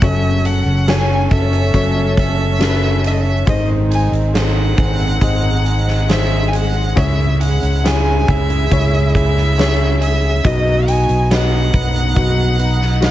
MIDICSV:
0, 0, Header, 1, 8, 480
1, 0, Start_track
1, 0, Key_signature, 4, "minor"
1, 0, Tempo, 869565
1, 12, Time_signature, 4, 2, 24, 8
1, 5292, Tempo, 860832
1, 7256, End_track
2, 0, Start_track
2, 0, Title_t, "Violin"
2, 0, Program_c, 0, 40
2, 17, Note_on_c, 0, 76, 93
2, 251, Note_on_c, 0, 78, 85
2, 259, Note_off_c, 0, 76, 0
2, 490, Note_on_c, 0, 80, 92
2, 498, Note_off_c, 0, 78, 0
2, 726, Note_off_c, 0, 80, 0
2, 732, Note_on_c, 0, 76, 99
2, 1183, Note_off_c, 0, 76, 0
2, 1208, Note_on_c, 0, 76, 101
2, 1659, Note_off_c, 0, 76, 0
2, 1695, Note_on_c, 0, 76, 89
2, 1725, Note_on_c, 0, 75, 69
2, 1734, Note_off_c, 0, 76, 0
2, 1768, Note_on_c, 0, 76, 90
2, 1776, Note_off_c, 0, 75, 0
2, 1924, Note_off_c, 0, 76, 0
2, 1930, Note_on_c, 0, 75, 90
2, 2035, Note_off_c, 0, 75, 0
2, 2173, Note_on_c, 0, 80, 83
2, 2277, Note_off_c, 0, 80, 0
2, 2409, Note_on_c, 0, 78, 94
2, 3376, Note_on_c, 0, 76, 94
2, 3384, Note_off_c, 0, 78, 0
2, 3575, Note_on_c, 0, 80, 66
2, 3584, Note_off_c, 0, 76, 0
2, 3619, Note_on_c, 0, 78, 83
2, 3627, Note_off_c, 0, 80, 0
2, 3849, Note_on_c, 0, 76, 88
2, 3858, Note_off_c, 0, 78, 0
2, 4089, Note_off_c, 0, 76, 0
2, 4092, Note_on_c, 0, 78, 83
2, 4342, Note_on_c, 0, 80, 91
2, 4350, Note_off_c, 0, 78, 0
2, 4579, Note_on_c, 0, 76, 108
2, 4587, Note_off_c, 0, 80, 0
2, 5048, Note_off_c, 0, 76, 0
2, 5052, Note_on_c, 0, 76, 106
2, 5509, Note_off_c, 0, 76, 0
2, 5538, Note_on_c, 0, 76, 96
2, 5779, Note_on_c, 0, 75, 108
2, 5788, Note_off_c, 0, 76, 0
2, 6019, Note_on_c, 0, 80, 96
2, 6028, Note_off_c, 0, 75, 0
2, 6255, Note_off_c, 0, 80, 0
2, 6260, Note_on_c, 0, 78, 108
2, 7190, Note_off_c, 0, 78, 0
2, 7218, Note_on_c, 0, 78, 109
2, 7256, Note_off_c, 0, 78, 0
2, 7256, End_track
3, 0, Start_track
3, 0, Title_t, "Grand piano"
3, 0, Program_c, 1, 0
3, 0, Control_c, 1, 64, 127
3, 11, Note_on_c, 1, 61, 72
3, 12, Note_on_c, 1, 66, 69
3, 13, Note_on_c, 1, 49, 67
3, 13, Note_on_c, 1, 69, 71
3, 17, Note_on_c, 1, 73, 77
3, 19, Control_c, 1, 64, 0
3, 130, Control_c, 1, 64, 127
3, 461, Note_off_c, 1, 61, 0
3, 462, Note_off_c, 1, 66, 0
3, 462, Note_off_c, 1, 69, 0
3, 464, Note_off_c, 1, 73, 0
3, 480, Note_on_c, 1, 61, 75
3, 483, Note_on_c, 1, 66, 61
3, 487, Note_on_c, 1, 69, 64
3, 491, Note_on_c, 1, 73, 80
3, 702, Note_off_c, 1, 49, 0
3, 936, Note_off_c, 1, 61, 0
3, 937, Note_off_c, 1, 66, 0
3, 939, Note_off_c, 1, 69, 0
3, 941, Note_off_c, 1, 73, 0
3, 957, Note_on_c, 1, 61, 70
3, 960, Note_on_c, 1, 66, 61
3, 964, Note_on_c, 1, 73, 76
3, 965, Note_on_c, 1, 69, 58
3, 1413, Note_off_c, 1, 61, 0
3, 1414, Note_off_c, 1, 66, 0
3, 1416, Note_off_c, 1, 73, 0
3, 1417, Note_off_c, 1, 69, 0
3, 1428, Note_on_c, 1, 61, 77
3, 1430, Note_on_c, 1, 66, 71
3, 1434, Note_on_c, 1, 69, 67
3, 1434, Note_on_c, 1, 70, 67
3, 1472, Note_off_c, 1, 70, 0
3, 1472, Note_on_c, 1, 71, 82
3, 1887, Note_off_c, 1, 61, 0
3, 1889, Note_off_c, 1, 66, 0
3, 1890, Note_off_c, 1, 69, 0
3, 1905, Note_on_c, 1, 60, 71
3, 1909, Note_on_c, 1, 63, 68
3, 1910, Note_off_c, 1, 71, 0
3, 1910, Note_on_c, 1, 51, 67
3, 1911, Note_on_c, 1, 44, 62
3, 1913, Note_on_c, 1, 68, 65
3, 1915, Note_on_c, 1, 72, 90
3, 1925, Control_c, 1, 64, 0
3, 2028, Control_c, 1, 64, 127
3, 2367, Note_off_c, 1, 60, 0
3, 2369, Note_off_c, 1, 63, 0
3, 2371, Note_off_c, 1, 68, 0
3, 2372, Note_off_c, 1, 72, 0
3, 2385, Note_on_c, 1, 60, 64
3, 2391, Note_on_c, 1, 63, 60
3, 2393, Note_on_c, 1, 68, 55
3, 2393, Note_on_c, 1, 69, 56
3, 2428, Note_on_c, 1, 72, 67
3, 2431, Note_off_c, 1, 69, 0
3, 2612, Note_off_c, 1, 44, 0
3, 2612, Note_off_c, 1, 51, 0
3, 2849, Note_off_c, 1, 60, 0
3, 2852, Note_off_c, 1, 63, 0
3, 2853, Note_off_c, 1, 68, 0
3, 2870, Note_off_c, 1, 72, 0
3, 2875, Note_on_c, 1, 60, 68
3, 2875, Note_on_c, 1, 63, 56
3, 2878, Note_on_c, 1, 68, 66
3, 2880, Note_on_c, 1, 75, 70
3, 3336, Note_off_c, 1, 60, 0
3, 3336, Note_off_c, 1, 63, 0
3, 3338, Note_off_c, 1, 68, 0
3, 3339, Note_off_c, 1, 75, 0
3, 3355, Note_on_c, 1, 60, 66
3, 3358, Note_on_c, 1, 51, 58
3, 3360, Note_on_c, 1, 68, 66
3, 3364, Note_on_c, 1, 72, 77
3, 3818, Note_off_c, 1, 60, 0
3, 3819, Note_off_c, 1, 51, 0
3, 3820, Note_off_c, 1, 68, 0
3, 3822, Note_off_c, 1, 72, 0
3, 3838, Note_on_c, 1, 61, 74
3, 3840, Note_on_c, 1, 44, 62
3, 3841, Note_on_c, 1, 64, 60
3, 3842, Note_on_c, 1, 68, 70
3, 3844, Note_on_c, 1, 73, 78
3, 3851, Control_c, 1, 64, 0
3, 3941, Control_c, 1, 64, 127
3, 4301, Note_off_c, 1, 61, 0
3, 4302, Note_off_c, 1, 64, 0
3, 4303, Note_off_c, 1, 68, 0
3, 4304, Note_off_c, 1, 73, 0
3, 4325, Note_on_c, 1, 61, 57
3, 4325, Note_on_c, 1, 64, 64
3, 4329, Note_on_c, 1, 68, 55
3, 4331, Note_on_c, 1, 73, 65
3, 4544, Note_off_c, 1, 44, 0
3, 4783, Note_off_c, 1, 61, 0
3, 4783, Note_off_c, 1, 64, 0
3, 4785, Note_off_c, 1, 68, 0
3, 4786, Note_off_c, 1, 73, 0
3, 4803, Note_on_c, 1, 61, 65
3, 4806, Note_on_c, 1, 64, 61
3, 4811, Note_on_c, 1, 68, 58
3, 4813, Note_on_c, 1, 73, 75
3, 5261, Note_off_c, 1, 61, 0
3, 5263, Note_off_c, 1, 64, 0
3, 5265, Note_off_c, 1, 68, 0
3, 5266, Note_off_c, 1, 73, 0
3, 5286, Note_on_c, 1, 61, 75
3, 5288, Note_on_c, 1, 64, 66
3, 5292, Note_on_c, 1, 68, 64
3, 5295, Note_on_c, 1, 73, 83
3, 5745, Note_off_c, 1, 61, 0
3, 5746, Note_off_c, 1, 64, 0
3, 5748, Note_off_c, 1, 68, 0
3, 5750, Note_off_c, 1, 73, 0
3, 5769, Note_on_c, 1, 63, 73
3, 5771, Note_on_c, 1, 66, 76
3, 5775, Note_on_c, 1, 71, 68
3, 5776, Control_c, 1, 64, 0
3, 5776, Note_on_c, 1, 75, 80
3, 5876, Control_c, 1, 64, 127
3, 6225, Note_off_c, 1, 63, 0
3, 6226, Note_off_c, 1, 66, 0
3, 6229, Note_off_c, 1, 71, 0
3, 6229, Note_off_c, 1, 75, 0
3, 6247, Note_on_c, 1, 63, 69
3, 6249, Note_on_c, 1, 66, 63
3, 6252, Note_on_c, 1, 71, 66
3, 6256, Note_on_c, 1, 75, 74
3, 6704, Note_off_c, 1, 63, 0
3, 6706, Note_off_c, 1, 66, 0
3, 6707, Note_off_c, 1, 71, 0
3, 6709, Note_off_c, 1, 75, 0
3, 6721, Note_on_c, 1, 63, 77
3, 6725, Note_on_c, 1, 66, 59
3, 6725, Note_on_c, 1, 71, 60
3, 6730, Note_on_c, 1, 75, 79
3, 7180, Note_off_c, 1, 63, 0
3, 7181, Note_off_c, 1, 66, 0
3, 7182, Note_off_c, 1, 71, 0
3, 7184, Note_off_c, 1, 75, 0
3, 7199, Note_on_c, 1, 63, 77
3, 7199, Note_on_c, 1, 66, 73
3, 7204, Note_on_c, 1, 71, 66
3, 7205, Note_on_c, 1, 75, 85
3, 7256, Note_off_c, 1, 63, 0
3, 7256, Note_off_c, 1, 66, 0
3, 7256, Note_off_c, 1, 71, 0
3, 7256, Note_off_c, 1, 75, 0
3, 7256, End_track
4, 0, Start_track
4, 0, Title_t, "French horn section"
4, 0, Program_c, 2, 60
4, 7, Note_on_c, 2, 61, 115
4, 1893, Note_off_c, 2, 61, 0
4, 1921, Note_on_c, 2, 63, 119
4, 2709, Note_off_c, 2, 63, 0
4, 2882, Note_on_c, 2, 63, 99
4, 3583, Note_off_c, 2, 63, 0
4, 3847, Note_on_c, 2, 68, 111
4, 5749, Note_off_c, 2, 68, 0
4, 5770, Note_on_c, 2, 66, 127
4, 6581, Note_off_c, 2, 66, 0
4, 6728, Note_on_c, 2, 66, 111
4, 6951, Note_off_c, 2, 66, 0
4, 6968, Note_on_c, 2, 63, 122
4, 7256, Note_off_c, 2, 63, 0
4, 7256, End_track
5, 0, Start_track
5, 0, Title_t, "Clean electric guitar"
5, 0, Program_c, 3, 27
5, 0, Note_on_c, 3, 47, 87
5, 0, Note_on_c, 3, 59, 67
5, 0, Note_on_c, 3, 63, 62
5, 0, Note_on_c, 3, 71, 66
5, 14, Note_on_c, 3, 54, 72
5, 59, Note_off_c, 3, 47, 0
5, 61, Note_off_c, 3, 59, 0
5, 61, Note_off_c, 3, 63, 0
5, 61, Note_off_c, 3, 71, 0
5, 132, Note_on_c, 3, 61, 56
5, 251, Note_on_c, 3, 69, 61
5, 362, Note_off_c, 3, 61, 0
5, 369, Note_on_c, 3, 61, 61
5, 479, Note_off_c, 3, 69, 0
5, 486, Note_on_c, 3, 69, 65
5, 606, Note_on_c, 3, 66, 60
5, 718, Note_off_c, 3, 69, 0
5, 724, Note_on_c, 3, 69, 71
5, 839, Note_off_c, 3, 61, 0
5, 845, Note_on_c, 3, 61, 61
5, 956, Note_off_c, 3, 54, 0
5, 962, Note_on_c, 3, 54, 86
5, 1076, Note_off_c, 3, 61, 0
5, 1083, Note_on_c, 3, 61, 60
5, 1198, Note_off_c, 3, 69, 0
5, 1204, Note_on_c, 3, 69, 70
5, 1314, Note_off_c, 3, 61, 0
5, 1321, Note_on_c, 3, 61, 63
5, 1432, Note_off_c, 3, 69, 0
5, 1439, Note_on_c, 3, 69, 62
5, 1554, Note_off_c, 3, 66, 0
5, 1560, Note_on_c, 3, 66, 56
5, 1671, Note_off_c, 3, 69, 0
5, 1678, Note_on_c, 3, 69, 71
5, 1793, Note_off_c, 3, 61, 0
5, 1799, Note_on_c, 3, 61, 65
5, 1917, Note_on_c, 3, 44, 72
5, 1965, Note_off_c, 3, 54, 0
5, 1965, Note_off_c, 3, 69, 0
5, 1966, Note_off_c, 3, 61, 0
5, 1966, Note_off_c, 3, 66, 0
5, 2035, Note_on_c, 3, 60, 60
5, 2156, Note_on_c, 3, 68, 63
5, 2268, Note_off_c, 3, 60, 0
5, 2275, Note_on_c, 3, 60, 60
5, 2392, Note_off_c, 3, 68, 0
5, 2394, Note_on_c, 3, 68, 59
5, 2518, Note_on_c, 3, 63, 55
5, 2632, Note_off_c, 3, 68, 0
5, 2634, Note_on_c, 3, 68, 66
5, 2750, Note_off_c, 3, 60, 0
5, 2756, Note_on_c, 3, 60, 62
5, 2872, Note_off_c, 3, 44, 0
5, 2879, Note_on_c, 3, 44, 83
5, 2990, Note_off_c, 3, 60, 0
5, 2996, Note_on_c, 3, 60, 51
5, 3116, Note_off_c, 3, 68, 0
5, 3118, Note_on_c, 3, 68, 71
5, 3236, Note_off_c, 3, 60, 0
5, 3242, Note_on_c, 3, 60, 57
5, 3361, Note_off_c, 3, 68, 0
5, 3363, Note_on_c, 3, 68, 60
5, 3478, Note_off_c, 3, 63, 0
5, 3484, Note_on_c, 3, 63, 59
5, 3602, Note_off_c, 3, 68, 0
5, 3604, Note_on_c, 3, 68, 64
5, 3717, Note_off_c, 3, 60, 0
5, 3724, Note_on_c, 3, 60, 65
5, 3847, Note_on_c, 3, 49, 82
5, 3894, Note_off_c, 3, 44, 0
5, 3894, Note_off_c, 3, 60, 0
5, 3895, Note_off_c, 3, 63, 0
5, 3967, Note_on_c, 3, 61, 58
5, 4085, Note_off_c, 3, 68, 0
5, 4088, Note_on_c, 3, 68, 63
5, 4201, Note_off_c, 3, 61, 0
5, 4208, Note_on_c, 3, 61, 55
5, 4323, Note_off_c, 3, 68, 0
5, 4330, Note_on_c, 3, 68, 65
5, 4451, Note_on_c, 3, 64, 51
5, 4562, Note_off_c, 3, 68, 0
5, 4569, Note_on_c, 3, 68, 70
5, 4681, Note_off_c, 3, 61, 0
5, 4688, Note_on_c, 3, 61, 60
5, 4800, Note_off_c, 3, 49, 0
5, 4807, Note_on_c, 3, 49, 75
5, 4924, Note_off_c, 3, 61, 0
5, 4930, Note_on_c, 3, 61, 59
5, 5040, Note_off_c, 3, 68, 0
5, 5047, Note_on_c, 3, 68, 71
5, 5160, Note_off_c, 3, 61, 0
5, 5167, Note_on_c, 3, 61, 62
5, 5280, Note_off_c, 3, 68, 0
5, 5287, Note_on_c, 3, 68, 61
5, 5405, Note_off_c, 3, 64, 0
5, 5412, Note_on_c, 3, 64, 56
5, 5521, Note_off_c, 3, 68, 0
5, 5528, Note_on_c, 3, 68, 64
5, 5642, Note_off_c, 3, 61, 0
5, 5649, Note_on_c, 3, 61, 62
5, 5767, Note_on_c, 3, 47, 78
5, 5817, Note_off_c, 3, 49, 0
5, 5817, Note_off_c, 3, 61, 0
5, 5817, Note_off_c, 3, 68, 0
5, 5819, Note_off_c, 3, 64, 0
5, 5891, Note_on_c, 3, 59, 65
5, 6011, Note_on_c, 3, 71, 59
5, 6122, Note_off_c, 3, 59, 0
5, 6129, Note_on_c, 3, 59, 61
5, 6244, Note_off_c, 3, 71, 0
5, 6250, Note_on_c, 3, 71, 67
5, 6368, Note_on_c, 3, 63, 59
5, 6483, Note_off_c, 3, 71, 0
5, 6489, Note_on_c, 3, 71, 67
5, 6603, Note_off_c, 3, 59, 0
5, 6609, Note_on_c, 3, 59, 70
5, 6724, Note_off_c, 3, 47, 0
5, 6730, Note_on_c, 3, 47, 92
5, 6844, Note_off_c, 3, 59, 0
5, 6851, Note_on_c, 3, 59, 60
5, 6964, Note_off_c, 3, 71, 0
5, 6970, Note_on_c, 3, 71, 83
5, 7084, Note_off_c, 3, 59, 0
5, 7091, Note_on_c, 3, 59, 62
5, 7204, Note_off_c, 3, 71, 0
5, 7211, Note_on_c, 3, 71, 65
5, 7256, Note_off_c, 3, 47, 0
5, 7256, Note_off_c, 3, 59, 0
5, 7256, Note_off_c, 3, 63, 0
5, 7256, Note_off_c, 3, 71, 0
5, 7256, End_track
6, 0, Start_track
6, 0, Title_t, "String section"
6, 0, Program_c, 4, 48
6, 0, Note_on_c, 4, 54, 81
6, 10, Note_on_c, 4, 61, 78
6, 10, Note_on_c, 4, 69, 96
6, 1893, Note_off_c, 4, 54, 0
6, 1897, Note_off_c, 4, 61, 0
6, 1897, Note_off_c, 4, 69, 0
6, 1908, Note_on_c, 4, 60, 90
6, 1909, Note_on_c, 4, 56, 78
6, 1910, Note_on_c, 4, 51, 78
6, 3822, Note_off_c, 4, 60, 0
6, 3823, Note_off_c, 4, 51, 0
6, 3848, Note_on_c, 4, 49, 79
6, 3849, Note_on_c, 4, 64, 86
6, 5744, Note_off_c, 4, 56, 0
6, 5752, Note_off_c, 4, 49, 0
6, 5753, Note_off_c, 4, 64, 0
6, 5771, Note_on_c, 4, 54, 82
6, 5772, Note_on_c, 4, 63, 89
6, 5774, Note_on_c, 4, 59, 67
6, 7256, Note_off_c, 4, 54, 0
6, 7256, Note_off_c, 4, 59, 0
6, 7256, Note_off_c, 4, 63, 0
6, 7256, End_track
7, 0, Start_track
7, 0, Title_t, "Fingered electric bass"
7, 0, Program_c, 5, 33
7, 11, Note_on_c, 5, 30, 95
7, 344, Note_off_c, 5, 30, 0
7, 363, Note_on_c, 5, 30, 92
7, 699, Note_off_c, 5, 30, 0
7, 725, Note_on_c, 5, 30, 88
7, 946, Note_off_c, 5, 30, 0
7, 959, Note_on_c, 5, 30, 101
7, 1894, Note_off_c, 5, 30, 0
7, 1916, Note_on_c, 5, 32, 105
7, 2254, Note_off_c, 5, 32, 0
7, 2273, Note_on_c, 5, 32, 97
7, 2613, Note_off_c, 5, 32, 0
7, 2638, Note_on_c, 5, 32, 90
7, 2862, Note_off_c, 5, 32, 0
7, 2878, Note_on_c, 5, 32, 92
7, 3823, Note_off_c, 5, 32, 0
7, 3846, Note_on_c, 5, 37, 105
7, 4186, Note_off_c, 5, 37, 0
7, 4210, Note_on_c, 5, 37, 82
7, 4548, Note_off_c, 5, 37, 0
7, 4573, Note_on_c, 5, 37, 91
7, 4794, Note_off_c, 5, 37, 0
7, 4810, Note_on_c, 5, 37, 85
7, 5748, Note_off_c, 5, 37, 0
7, 5771, Note_on_c, 5, 35, 95
7, 6108, Note_off_c, 5, 35, 0
7, 6131, Note_on_c, 5, 35, 89
7, 6469, Note_off_c, 5, 35, 0
7, 6492, Note_on_c, 5, 35, 95
7, 6714, Note_off_c, 5, 35, 0
7, 6729, Note_on_c, 5, 35, 105
7, 7256, Note_off_c, 5, 35, 0
7, 7256, End_track
8, 0, Start_track
8, 0, Title_t, "Drums"
8, 11, Note_on_c, 9, 36, 96
8, 11, Note_on_c, 9, 42, 91
8, 66, Note_off_c, 9, 36, 0
8, 67, Note_off_c, 9, 42, 0
8, 249, Note_on_c, 9, 42, 80
8, 304, Note_off_c, 9, 42, 0
8, 487, Note_on_c, 9, 38, 107
8, 488, Note_on_c, 9, 42, 91
8, 542, Note_off_c, 9, 38, 0
8, 543, Note_off_c, 9, 42, 0
8, 723, Note_on_c, 9, 42, 51
8, 724, Note_on_c, 9, 36, 90
8, 778, Note_off_c, 9, 42, 0
8, 779, Note_off_c, 9, 36, 0
8, 844, Note_on_c, 9, 42, 48
8, 899, Note_off_c, 9, 42, 0
8, 960, Note_on_c, 9, 36, 88
8, 963, Note_on_c, 9, 42, 85
8, 1015, Note_off_c, 9, 36, 0
8, 1018, Note_off_c, 9, 42, 0
8, 1200, Note_on_c, 9, 36, 83
8, 1201, Note_on_c, 9, 42, 61
8, 1255, Note_off_c, 9, 36, 0
8, 1257, Note_off_c, 9, 42, 0
8, 1439, Note_on_c, 9, 42, 96
8, 1440, Note_on_c, 9, 38, 122
8, 1494, Note_off_c, 9, 42, 0
8, 1495, Note_off_c, 9, 38, 0
8, 1680, Note_on_c, 9, 42, 78
8, 1735, Note_off_c, 9, 42, 0
8, 1917, Note_on_c, 9, 36, 101
8, 1918, Note_on_c, 9, 42, 93
8, 1972, Note_off_c, 9, 36, 0
8, 1973, Note_off_c, 9, 42, 0
8, 2162, Note_on_c, 9, 42, 77
8, 2217, Note_off_c, 9, 42, 0
8, 2282, Note_on_c, 9, 42, 46
8, 2337, Note_off_c, 9, 42, 0
8, 2402, Note_on_c, 9, 38, 114
8, 2403, Note_on_c, 9, 42, 105
8, 2457, Note_off_c, 9, 38, 0
8, 2458, Note_off_c, 9, 42, 0
8, 2637, Note_on_c, 9, 42, 52
8, 2639, Note_on_c, 9, 36, 93
8, 2692, Note_off_c, 9, 42, 0
8, 2694, Note_off_c, 9, 36, 0
8, 2761, Note_on_c, 9, 42, 51
8, 2816, Note_off_c, 9, 42, 0
8, 2878, Note_on_c, 9, 36, 80
8, 2881, Note_on_c, 9, 42, 85
8, 2933, Note_off_c, 9, 36, 0
8, 2936, Note_off_c, 9, 42, 0
8, 3125, Note_on_c, 9, 42, 59
8, 3180, Note_off_c, 9, 42, 0
8, 3245, Note_on_c, 9, 38, 29
8, 3300, Note_off_c, 9, 38, 0
8, 3365, Note_on_c, 9, 42, 89
8, 3366, Note_on_c, 9, 38, 127
8, 3420, Note_off_c, 9, 42, 0
8, 3422, Note_off_c, 9, 38, 0
8, 3605, Note_on_c, 9, 42, 84
8, 3661, Note_off_c, 9, 42, 0
8, 3847, Note_on_c, 9, 36, 101
8, 3848, Note_on_c, 9, 42, 98
8, 3902, Note_off_c, 9, 36, 0
8, 3903, Note_off_c, 9, 42, 0
8, 4090, Note_on_c, 9, 42, 78
8, 4145, Note_off_c, 9, 42, 0
8, 4212, Note_on_c, 9, 42, 51
8, 4267, Note_off_c, 9, 42, 0
8, 4336, Note_on_c, 9, 38, 112
8, 4337, Note_on_c, 9, 42, 98
8, 4391, Note_off_c, 9, 38, 0
8, 4392, Note_off_c, 9, 42, 0
8, 4573, Note_on_c, 9, 36, 91
8, 4573, Note_on_c, 9, 42, 53
8, 4628, Note_off_c, 9, 36, 0
8, 4628, Note_off_c, 9, 42, 0
8, 4692, Note_on_c, 9, 42, 50
8, 4748, Note_off_c, 9, 42, 0
8, 4811, Note_on_c, 9, 36, 87
8, 4812, Note_on_c, 9, 42, 79
8, 4866, Note_off_c, 9, 36, 0
8, 4868, Note_off_c, 9, 42, 0
8, 5050, Note_on_c, 9, 36, 83
8, 5051, Note_on_c, 9, 42, 63
8, 5105, Note_off_c, 9, 36, 0
8, 5106, Note_off_c, 9, 42, 0
8, 5172, Note_on_c, 9, 38, 28
8, 5228, Note_off_c, 9, 38, 0
8, 5295, Note_on_c, 9, 42, 94
8, 5296, Note_on_c, 9, 38, 121
8, 5350, Note_off_c, 9, 42, 0
8, 5352, Note_off_c, 9, 38, 0
8, 5531, Note_on_c, 9, 42, 90
8, 5587, Note_off_c, 9, 42, 0
8, 5771, Note_on_c, 9, 36, 98
8, 5772, Note_on_c, 9, 42, 98
8, 5827, Note_off_c, 9, 36, 0
8, 5827, Note_off_c, 9, 42, 0
8, 6014, Note_on_c, 9, 42, 86
8, 6070, Note_off_c, 9, 42, 0
8, 6130, Note_on_c, 9, 42, 49
8, 6186, Note_off_c, 9, 42, 0
8, 6254, Note_on_c, 9, 38, 110
8, 6255, Note_on_c, 9, 42, 100
8, 6310, Note_off_c, 9, 38, 0
8, 6311, Note_off_c, 9, 42, 0
8, 6490, Note_on_c, 9, 42, 61
8, 6492, Note_on_c, 9, 36, 97
8, 6546, Note_off_c, 9, 42, 0
8, 6547, Note_off_c, 9, 36, 0
8, 6614, Note_on_c, 9, 42, 53
8, 6670, Note_off_c, 9, 42, 0
8, 6729, Note_on_c, 9, 36, 86
8, 6730, Note_on_c, 9, 42, 77
8, 6785, Note_off_c, 9, 36, 0
8, 6786, Note_off_c, 9, 42, 0
8, 6969, Note_on_c, 9, 42, 56
8, 7024, Note_off_c, 9, 42, 0
8, 7091, Note_on_c, 9, 38, 29
8, 7147, Note_off_c, 9, 38, 0
8, 7208, Note_on_c, 9, 42, 101
8, 7210, Note_on_c, 9, 38, 120
8, 7256, Note_off_c, 9, 38, 0
8, 7256, Note_off_c, 9, 42, 0
8, 7256, End_track
0, 0, End_of_file